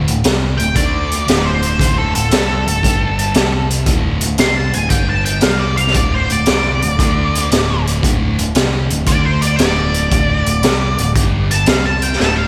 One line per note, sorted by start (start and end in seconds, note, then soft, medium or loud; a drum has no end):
0.07 0.24 D1 medium
0.07 0.21 D2 medium
0.07 0.21 A2 medium
0.07 closed hi-hat medium
0.23 0.57 C2 medium
0.23 0.58 C3 medium
0.23 0.58 G3 medium
0.23 0.59 C4 loud
0.23 snare loud
0.23 closed hi-hat medium
0.58 0.75 D1 medium
0.58 0.73 D2 medium
0.58 0.73 A2 medium
0.58 0.75 G5 medium
0.58 closed hi-hat medium
0.75 1.24 D2 medium
0.75 1.27 D3 medium
0.75 1.27 A3 medium
0.75 1.27 D4 medium
0.75 1.43 D5 medium
0.75 kick medium
0.75 closed hi-hat medium
1.11 closed hi-hat medium
1.26 1.77 D1 medium
1.26 1.78 D2 medium
1.26 1.79 A2 medium
1.26 1.79 D3 medium
1.26 snare loud
1.26 closed hi-hat medium
1.46 1.96 C5 medium
1.62 closed hi-hat medium
1.79 2.13 D1 medium
1.79 2.14 D2 medium
1.79 2.14 A2 medium
1.79 2.15 D3 medium
1.79 kick medium
1.79 closed hi-hat medium
1.98 2.14 A4 medium
2.15 2.31 D1 medium
2.15 2.29 D2 medium
2.15 2.29 A2 medium
2.15 3.67 A4 medium
2.15 closed hi-hat medium
2.31 2.65 C2 medium
2.31 2.66 C3 medium
2.31 2.66 G3 medium
2.31 2.67 C4 medium
2.31 snare loud
2.31 closed hi-hat medium
2.67 2.83 D1 medium
2.67 2.81 D2 medium
2.67 2.81 A2 medium
2.67 closed hi-hat medium
2.83 3.32 G1 medium
2.83 3.36 G2 medium
2.83 3.36 D3 medium
2.83 3.35 G3 loud
2.83 kick medium
2.83 closed hi-hat medium
3.19 closed hi-hat medium
3.34 3.84 C2 medium
3.34 3.87 C3 medium
3.34 3.88 G3 medium
3.34 3.88 C4 medium
3.34 snare loud
3.34 closed hi-hat medium
3.70 closed hi-hat medium
3.86 4.20 D1 medium
3.86 4.22 D2 medium
3.86 4.22 A2 medium
3.86 4.23 D3 medium
3.86 kick loud
3.86 closed hi-hat medium
4.21 4.38 D1 medium
4.21 closed hi-hat medium
4.25 4.38 D2 medium
4.25 4.38 A2 medium
4.38 4.72 C2 medium
4.38 4.75 C3 medium
4.38 4.56 C6 medium
4.38 snare loud
4.38 closed hi-hat medium
4.42 4.75 G3 medium
4.42 4.75 C4 medium
4.56 4.74 A5 medium
4.73 4.90 D1 medium
4.73 4.89 D2 medium
4.73 4.89 A2 medium
4.73 4.90 G#5 medium
4.73 closed hi-hat medium
4.90 5.40 G1 medium
4.90 5.43 G2 medium
4.90 5.44 D3 medium
4.90 5.43 G3 medium
4.90 5.09 G5 medium
4.90 kick medium
4.90 closed hi-hat medium
5.09 5.25 A5 medium
5.25 5.43 G5 medium
5.25 closed hi-hat medium
5.41 5.92 C2 medium
5.41 5.95 C3 medium
5.41 5.96 G3 medium
5.41 5.59 F5 medium
5.41 snare loud
5.41 closed hi-hat medium
5.45 5.96 C4 medium
5.59 5.76 D5 medium
5.76 5.94 F5 medium
5.76 closed hi-hat medium
5.87 snare soft
5.94 6.28 D1 medium
5.94 6.30 D2 medium
5.94 6.31 A2 medium
5.94 6.31 D3 medium
5.94 6.13 D5 medium
5.94 kick loud
5.94 closed hi-hat medium
6.14 6.30 C5 medium
6.30 6.46 D1 medium
6.30 6.45 D2 medium
6.30 6.45 A2 medium
6.30 7.83 D5 medium
6.30 closed hi-hat medium
6.46 6.81 C2 medium
6.46 6.82 C3 medium
6.46 6.83 G3 medium
6.46 6.83 C4 medium
6.46 snare loud
6.46 closed hi-hat medium
6.82 6.99 D1 medium
6.82 6.96 D2 medium
6.82 6.97 A2 medium
6.82 closed hi-hat medium
6.99 7.48 D2 medium
6.99 7.51 D3 medium
6.99 7.52 A3 medium
6.99 7.52 D4 medium
6.99 kick medium
6.99 closed hi-hat medium
7.35 closed hi-hat medium
7.51 8.00 D1 medium
7.51 8.02 D2 medium
7.51 8.03 A2 medium
7.51 8.04 D3 loud
7.51 snare loud
7.51 closed hi-hat medium
7.87 closed hi-hat medium
8.03 8.37 D1 medium
8.03 8.38 D2 medium
8.03 8.38 A2 medium
8.03 8.38 D3 loud
8.03 kick loud
8.03 closed hi-hat medium
8.38 8.55 D1 medium
8.38 8.53 D2 medium
8.38 8.53 A2 medium
8.38 closed hi-hat medium
8.55 8.89 C2 medium
8.55 8.90 C3 medium
8.55 8.91 G3 medium
8.55 8.91 C4 medium
8.55 snare loud
8.55 closed hi-hat medium
8.90 9.06 D1 medium
8.90 9.05 D2 medium
8.90 9.05 A2 medium
8.90 closed hi-hat medium
9.06 9.56 D2 medium
9.06 9.59 D3 medium
9.06 9.59 A3 medium
9.06 9.61 D4 medium
9.06 9.25 D5 medium
9.06 kick medium
9.06 closed hi-hat medium
9.25 9.42 C5 medium
9.41 9.56 D5 medium
9.41 closed hi-hat medium
9.57 10.08 D1 medium
9.57 10.11 D2 medium
9.57 10.11 A2 medium
9.57 10.11 D3 loud
9.57 11.11 D5 medium
9.57 snare loud
9.57 closed hi-hat medium
9.94 closed hi-hat medium
10.11 10.45 D1 medium
10.11 10.46 D2 medium
10.11 10.47 A2 medium
10.11 10.47 D3 loud
10.11 kick medium
10.11 closed hi-hat medium
10.45 10.61 D1 medium
10.45 10.61 D2 medium
10.45 10.61 A2 medium
10.45 closed hi-hat medium
10.62 10.96 C2 medium
10.62 10.99 C3 medium
10.62 snare loud
10.62 closed hi-hat medium
10.67 11.00 G3 medium
10.67 11.00 C4 medium
10.98 11.14 D1 medium
10.98 11.14 D2 medium
10.98 11.14 A2 medium
10.98 closed hi-hat medium
11.15 11.64 G1 medium
11.15 11.68 G2 medium
11.15 11.69 D3 medium
11.15 kick medium
11.15 closed hi-hat medium
11.20 11.68 G3 medium
11.51 11.68 A5 medium
11.51 closed hi-hat medium
11.66 12.16 C2 medium
11.66 12.20 C3 medium
11.66 12.20 G3 medium
11.66 11.84 F5 medium
11.66 snare loud
11.66 closed hi-hat medium
11.70 12.21 C4 medium
11.85 12.03 A5 medium
12.02 12.19 G5 medium
12.02 closed hi-hat medium
12.12 snare soft
12.20 12.48 D1 medium
12.20 12.48 D2 medium
12.20 12.48 A2 medium
12.20 12.48 D3 medium
12.20 12.37 A5 medium
12.20 snare medium
12.36 12.48 F5 medium